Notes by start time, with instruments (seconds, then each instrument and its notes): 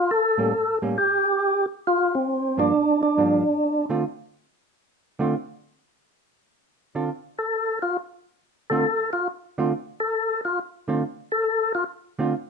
Already playing: tonewheel organ F4
0.11 tonewheel organ A4
0.38 hollow-body jazz guitar A2 G3 A#3 C#4
0.82 hollow-body jazz guitar A2 G3 A#3 C#4
0.98 tonewheel organ G4
1.87 tonewheel organ F4
2.15 tonewheel organ C4
2.57 hollow-body jazz guitar G2 F3 A#3 D4, tonewheel organ D4
3.03 tonewheel organ D4
3.17 hollow-body jazz guitar G2 F3 A#3 D4
3.90 hollow-body jazz guitar D3 A3 C4 F4
5.19 hollow-body jazz guitar D3 A3 C4 F4
6.95 hollow-body jazz guitar D3 C4 F4 A4
7.39 tonewheel organ A4
7.82 tonewheel organ F4
8.70 hollow-body jazz guitar D3 A3 C4 F4, tonewheel organ A4
9.13 tonewheel organ F4
9.58 hollow-body jazz guitar D3 A3 C4 F4
10.00 tonewheel organ A4
10.45 tonewheel organ F4
10.88 hollow-body jazz guitar D3 A3 C4 F4
11.32 tonewheel organ A4
11.75 tonewheel organ F4
12.19 hollow-body jazz guitar D3 A3 C4 F4